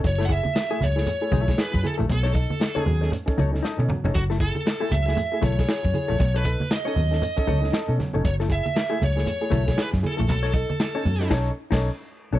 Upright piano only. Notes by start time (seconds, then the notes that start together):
0.04 F#3
0.28 E4 G#4
0.70 A3 E4 G#4
0.80 F#3
0.96 A3 E4 G#4
1.21 A3 E4 G#4
1.32 F#3
1.48 A3 E4 G#4
1.58 E4 G#4
1.73 F#3
1.83 E4 G#4
2.09 B2 F#3
2.35 D#4 A4
2.76 C#4 D#4 A4
2.86 B2 F#3
3.01 C#4 D#4 A4
3.26 C#4 D#4 A4
3.37 B2 F#3
3.52 C#4 D#4 A4
3.78 C#4 D#4 A4
3.88 B2 F#3
4.04 C#4 D#4 A4
4.15 F#3
4.40 E4 G#4
4.81 A3 E4 G#4
4.92 F#3
5.07 A3 E4 G#4
5.33 A3 E4 G#4
5.43 F#3
5.59 A3 E4 G#4
5.68 E4 G#4
5.84 F#3
5.94 E4 G#4
6.19 B2 F#3
6.45 D#4 A4
6.86 C#4 D#4 A4
6.96 B2 F#3
7.11 C#4 D#4 A4
7.36 C#4 D#4 A4
7.47 B2 F#3
7.62 C#4 D#4 A4
7.88 C#4 D#4 A4
7.98 B2 F#3
8.13 C#4 D#4 A4
8.23 F#3
8.49 E4 G#4
8.91 A3 E4 G#4
9.00 F#3
9.16 A3 E4 G#4
9.41 A3 E4 G#4
9.52 F#3
9.67 A3 E4 G#4
9.77 E4 G#4
9.93 F#3
10.03 E4 G#4
10.28 B2 F#3
10.54 D#4 A4
10.95 C#4 D#4 A4
11.05 B2 F#3
11.20 C#4 D#4 A4
11.30 C#4 D#4 A4
11.71 C#4 D#4 A4
12.33 B2 F#3